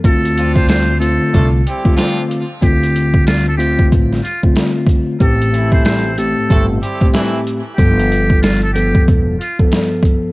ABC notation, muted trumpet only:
X:1
M:4/4
L:1/16
Q:"Swing 16ths" 1/4=93
K:Ddor
V:1 name="Muted trumpet"
A3 c c2 A3 z6 z | G4 F A G2 z2 F z4 z | A3 c c2 A3 z6 z | G4 F A G2 z2 F z4 z |]